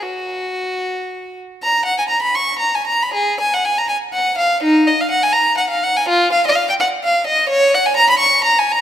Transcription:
violin
0.03 F#4
1.63 A#5
1.85 F#5
1.98 G#5
2.09 A#5
2.22 B5
2.35 C#6
2.59 A#5
2.75 G#5
2.87 A#5
3.03 B5
3.14 G#4
3.40 G#5
3.54 F#5
3.65 G#5
3.78 A#5
3.89 G#5
4.13 F#5
4.38 F5
4.64 D#4
4.88 D#5
5.01 F5
5.10 F#5
5.23 G#5
5.33 A#5
5.58 F#5
5.70 F5
5.84 F#5
5.97 G#5
6.09 F4
6.32 F5
6.47 D#5
6.56 F5
6.69 G5
6.80 F#5
7.04 F5
7.27 D#5
7.50 C#5
7.75 F#5
7.86 G#5
7.97 A#5
8.10 B5
8.20 C#6
8.44 A#5
8.59 G#5
8.72 A#5

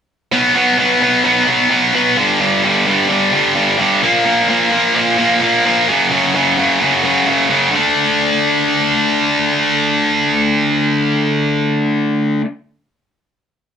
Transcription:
distorted electric guitar
0.32 B2 F#3 B3
0.55 B2 F#3 B3
0.78 B2 F#3 B3
1.02 B2 F#3 B3
1.25 B2 F#3 B3
1.47 B2 F#3 B3
1.70 B2 F#3 B3
1.94 B2 F#3 B3
2.17 G2 D3 G3
2.40 G2 D3 G3
2.63 G2 D3 G3
2.86 G2 D3 G3
3.09 G2 D3 G3
3.32 G2 D3 G3
3.55 G2 D3 G3
3.78 G2 D3 G3
4.03 A#2 F3 A#3
4.25 A#2 F3 A#3
4.49 A#2 F3 A#3
4.71 A#2 F3 A#3
4.94 A#2 F3 A#3
5.18 A#2 F3 A#3
5.42 A#2 F3 A#3
5.65 A#2 F3 A#3
5.88 F#2 C#3 F#3
6.11 F#2 C#3 F#3
6.34 F#2 C#3 F#3
6.58 F#2 C#3 F#3
6.80 F#2 C#3 F#3
7.04 F#2 C#3 F#3
7.27 F#2 C#3 F#3
7.50 F#2 C#3 F#3
7.72 D3 A3
7.76 D4

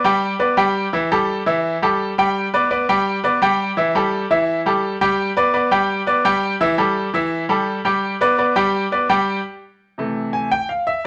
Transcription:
grand piano
0.04 G3 G4 G5
0.39 B3 B4 D5
0.57 G3 G4 G5
0.93 E3 E4 E5
1.11 G3 G4 A4
1.46 E3 E4 E5
1.82 G3 G4 A4
2.18 G3 G4 G5
2.54 B3 B4 D5
2.70 B3 B4 D5
2.89 G3 G4 G5
3.24 B3 B4 D5
3.42 G3 G4 G5
3.77 E3 E4 E5
3.95 G3 G4 A4
4.30 E3 E4 E5
4.66 G3 G4 A4
5.01 G3 G4 G5
5.37 B3 B4 D5
5.54 B3 B4 D5
5.71 G3 G4 G5
6.07 B3 B4 D5
6.25 G3 G4 G5
6.61 E3 E4 E5
6.78 G3 G4 A4
7.14 E3 E4 E5
7.49 G3 G4 A4
7.85 G3 G4 G5
8.21 B3 B4 D5
8.38 B3 B4 D5
8.56 G3 G4 G5
8.92 B3 B4 D5
9.09 G3 G4 G5
9.98 C3 E3 A3
10.33 G#5
10.52 G5
10.69 F5
10.87 E5

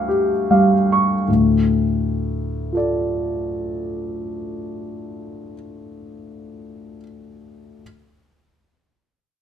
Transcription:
grand piano
Already playing: D2 G4 F5 G5 C#6
0.09 G4
0.51 G3 F5
0.92 C#6
1.28 D2 A2
2.73 F4 A4
2.77 D5

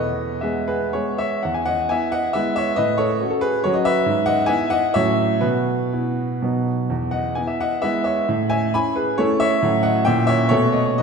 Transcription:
grand piano
Already playing: E2 B4 D#5
0.41 G#3 B3 G#4 B4 E5
0.68 G#4 B4
0.93 G#3 B3 G#4 C#5
1.18 C#5 E5
1.43 E2 F#5
1.54 G#5
1.66 D#5 F#5
1.89 B3 E4 E5 G#5
2.12 D#5 F#5
2.33 G#3 B3 E4 B4 E5
2.56 C#5 E5
2.76 A2 B4 D#5
2.98 A4 C#5
3.21 C#4 F#4
3.30 A4
3.41 G#4 B4
3.64 F#3 C#4 F#4 C#5
3.73 D#5
3.85 B4 E5
4.06 G#2
4.26 D#5 F#5
4.46 B3 E4 E5 G#5
4.70 D#5 F#5
4.94 A2 F#3 C#4 F#4 C#5 E5
5.41 B2 F#4 B4
5.93 B3 E4
6.42 B2 F#3 B3 D#4
6.90 E2
7.11 D#5 F#5
7.35 B3 E4 G#5
7.47 E5
7.61 D#5 F#5
7.82 G#3 B3 E4 B4 E5
8.04 C#5 E5
8.29 A2
8.50 E5 G#5
8.74 C#4 E4 G#5 B5
8.96 G#4 B4
9.18 A3 C#4 E4 A4 C#5
9.40 C#5 E5
9.62 A2 F#3 C#4 F#4
9.83 D#5 F#5
10.05 A#2 A#3 C#4 E4 E5 G5
10.27 C#5 E5
10.49 B2 A3 B3 F#4 A4 C#5
10.73 D#5
10.86 C#5
10.98 B4 D#5

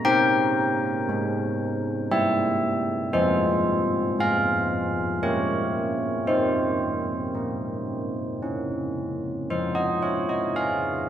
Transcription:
church bells
0.05 C4 A#4 G5
1.09 G#3
2.11 G3 E5
3.13 F3 G#4 C5
4.19 G#3 F5
5.23 A#3 G4 C#5
6.27 C4 G4 C5
7.35 A#3
8.42 C#4
9.50 F3 C5
9.75 D#5
10.03 C#5
10.29 D#5
10.55 F4 G#4 F5

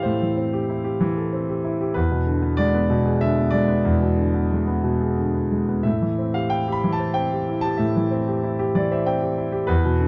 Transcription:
grand piano
Already playing: A2 E3 C4 E4 G4 A4 C5 D5 E5 F5 G5
0.03 A2 C5
0.22 E3
0.36 C4
0.53 G4
0.69 E4
0.84 G4
1.00 E3
1.17 A4
1.33 C4
1.49 G4
1.64 E4
1.81 G4
1.94 E2 B4
2.11 B2
2.27 D3
2.42 B3
2.57 G#3 D5
2.74 B3
2.90 B2
3.05 G#4
3.21 D3 E5
3.37 B3
3.50 G#3 D5
3.68 B3
3.85 E2
4.02 B2
4.17 D3
4.34 B3
4.52 G#3
4.67 B3
4.84 B2
5.01 G#4
5.18 D3
5.34 B3
5.51 G#3
5.69 B3
5.83 A2 E5
6.02 E3
6.18 C4
6.34 G4 F5
6.50 E4 G5
6.68 G4
6.72 B5
6.84 E3
6.93 A5
7.00 C5
7.14 C4 G5
7.32 G4
7.48 E4
7.61 G4 A5
7.78 A2 E5
7.96 E3
8.11 C4
8.28 G4
8.43 E4
8.59 G4
8.75 E3 D5
8.91 C5 E5
9.06 C4 G5
9.22 G4
9.38 E4
9.52 G4
9.67 E2 B4
9.85 B2
10.00 D3

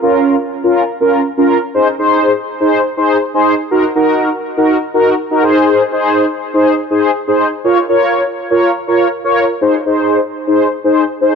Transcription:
analog polysynth
0.02 C#4 F4 A#4
0.64 C#4 F4 A#4
1.01 C#4 F4 A#4
1.37 C#4 F4 A#4
1.74 D#4 G#4 C5
1.99 D#4 G#4 C5
2.60 D#4 G#4 C5
2.97 D#4 G#4 C5
3.34 D#4 G#4 C5
3.71 D#4 F#4 A#4
3.96 D#4 F#4 A#4
4.57 D#4 F#4 A#4
4.94 D#4 F#4 A#4
5.31 D#4 F#4 A#4
5.43 D#4 G#4 C5
5.92 D#4 G#4 C5
6.54 D#4 G#4 C5
6.91 D#4 G#4 C5
7.28 D#4 G#4 C5
7.64 F4 A#4 C#5
7.89 F4 A#4 C#5
8.51 F4 A#4 C#5
8.88 F4 A#4 C#5
9.24 F4 A#4 C#5
9.61 D#4 G#4 C5
9.86 D#4 G#4 C5
10.47 D#4 G#4 C5
10.84 D#4 G#4 C5
11.21 D#4 G#4 C5

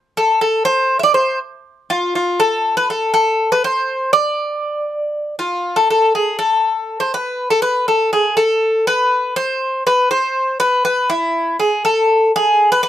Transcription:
bouzouki
0.17 A4
0.41 A4
0.65 C5
0.99 D5 E5
1.14 C5
1.90 F4
2.15 F4
2.40 A4
2.77 B4
2.90 A4
3.14 A4
3.52 B4
3.64 C5
4.13 D5
5.39 F4
5.76 A4
5.90 A4
6.15 G#4
6.39 A4
7.00 C5
7.14 B4
7.50 A4
7.62 B4
7.88 A4
8.13 G#4
8.37 A4
8.87 B4
9.36 C5
9.87 B4
10.11 C5
10.60 B4
10.85 B4
11.10 E4
11.60 G#4
11.85 A4
12.36 G#4
12.72 B4
12.83 B4

